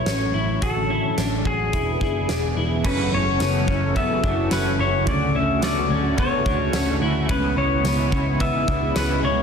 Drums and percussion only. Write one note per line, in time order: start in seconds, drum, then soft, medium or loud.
0.06 snare medium
0.06 closed hi-hat medium
0.62 kick medium
0.62 closed hi-hat medium
1.18 snare medium
1.18 closed hi-hat medium
1.45 kick medium
1.73 kick medium
1.73 closed hi-hat medium
2.01 kick medium
2.29 snare medium
2.29 closed hi-hat medium
2.84 kick loud
2.84 crash loud
3.40 snare medium
3.40 ride medium
3.40 tambourine medium
3.68 kick medium
3.96 kick medium
3.96 ride medium
4.24 kick medium
4.51 snare loud
4.51 ride medium
4.51 tambourine medium
5.07 kick loud
5.07 ride medium
5.62 snare medium
5.62 ride medium
5.62 tambourine medium
6.18 kick medium
6.18 ride medium
6.46 kick medium
6.73 snare loud
6.73 ride medium
6.73 tambourine medium
7.29 kick loud
7.29 ride medium
7.85 snare loud
7.85 ride medium
7.85 tambourine medium
8.12 kick medium
8.40 kick medium
8.40 ride medium
8.68 kick loud
8.96 snare loud
8.96 ride medium
8.96 tambourine medium